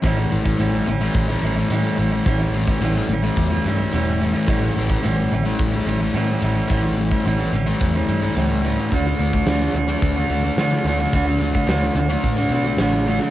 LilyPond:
<<
  \new Staff \with { instrumentName = "Overdriven electric guitar" } { \time 4/4 \key a \mixolydian \tempo 4 = 108 <a, e g cis' e'>16 <g cis' e'>8 <g cis' e'>16 <a, e g cis' e'>8 <e g cis' e'>16 <g cis' e'>8 <g cis' e'>16 <e g cis' e'>16 <g cis' e'>16 <a, e g cis' e'>8 <e g cis' e'>16 <g cis' e'>16 | <a, e g cis' e'>16 <g cis' e'>8 <g cis' e'>16 <a, e g cis' e'>8 <e g cis' e'>16 <g cis' e'>8 <g cis' e'>16 <e g cis' e'>16 <g cis' e'>16 <a, e g cis' e'>8 <e g cis' e'>16 <g cis' e'>16 | <a, e g cis' e'>16 <g cis' e'>8 <g cis' e'>16 <a, e g cis' e'>8 <e g cis' e'>16 <g cis' e'>8 <g cis' e'>16 <e g cis' e'>16 <g cis' e'>16 <a, e g cis' e'>8 <e g cis' e'>16 <g cis' e'>16 | <a, e g cis' e'>16 <g cis' e'>8 <g cis' e'>16 <a, e g cis' e'>8 <e g cis' e'>16 <g cis' e'>8 <g cis' e'>16 <e g cis' e'>16 <g cis' e'>16 <a, e g cis' e'>8 <e g cis' e'>16 <g cis' e'>16 |
<d a d' fis'>16 <a d' fis'>8 <a d' fis'>16 <d a d' fis'>8 <d a d' fis'>16 <a d' fis'>8 <a d' fis'>16 <d a d' fis'>16 <a d' fis'>16 <d a d' fis'>8 <d a d' fis'>16 <a d' fis'>16 | <d a d' fis'>16 <a d' fis'>8 <a d' fis'>16 <d a d' fis'>8 <d a d' fis'>16 <a d' fis'>8 <a d' fis'>16 <d a d' fis'>16 <a d' fis'>16 <d a d' fis'>8 <d a d' fis'>16 <a d' fis'>16 | }
  \new Staff \with { instrumentName = "Distorted electric guitar" } { \time 4/4 \key a \mixolydian <a, e a>8 <a, e a>8 <a, e a>16 <e a>8 <e a>8 <e a>8 <e a>16 <a, e a>16 <e a>16 <a, e a>16 <e a>16 | <a, e a>8 <a, e a>8 <a, e a>16 <e a>8 <e a>8 <e a>8 <e a>16 <a, e a>16 <e a>16 <a, e a>16 <e a>16 | <a, e a>8 <a, e a>8 <a, e a>16 <e a>8 <e a>8 <e a>8 <e a>16 <a, e a>16 <e a>16 <a, e a>16 <e a>16 | <a, e a>8 <a, e a>8 <a, e a>16 <e a>8 <e a>8 <e a>8 <e a>16 <a, e a>16 <e a>16 <a, e a>16 <e a>16 |
<d a d'>8 <d a d'>8 <d a d'>16 <a d'>8 <a d'>8 <a d'>8 <a d'>16 <d a d'>16 <a d'>16 <d a d'>16 <a d'>16 | <d a d'>8 <d a d'>8 <d a d'>16 <a d'>8 <a d'>8 <a d'>8 <a d'>16 <d a d'>16 <a d'>16 <d a d'>16 <a d'>16 | }
  \new Staff \with { instrumentName = "Picked electric bass" } { \clef bass \time 4/4 \key a \mixolydian a,,8 a,,8 a,,8 a,,8 a,,8 a,,8 a,8 a,,8 | a,,4 a,,8 a,,8 e,8 g,8 e,,4 | a,,8 a,,8 a,,8 a,,8 a,,8 a,,8 a,8 a,,8 | a,,4 a,,8 a,,8 e,8 g,8 cis,4 |
d,8 d,8 d,8 d,8 d,8 d,8 d8 d,8 | d,4 d,8 d,8 a,8 b,8 a,,4 | }
  \new DrumStaff \with { instrumentName = "Drums" } \drummode { \time 4/4 <hh bd>8 hh16 bd16 hh8 hh8 <hh bd>8 hh8 hh8 hh8 | <hh bd>8 hh16 bd16 hh8 hh8 <hh bd>8 hh8 hh8 hh8 | <hh bd>8 hh16 bd16 hh8 hh8 <hh bd>8 hh8 hh8 hh8 | <hh bd>8 hh16 bd16 hh8 hh8 <hh bd>8 hh8 hh8 hh8 |
<hh bd>8 hh16 bd16 <hh sn>8 hh8 <hh bd>8 hh8 <hh sn>8 hh8 | <hh bd>8 hh16 bd16 <hh sn>8 hh8 <hh bd>8 hh8 <hh sn>8 hh8 | }
>>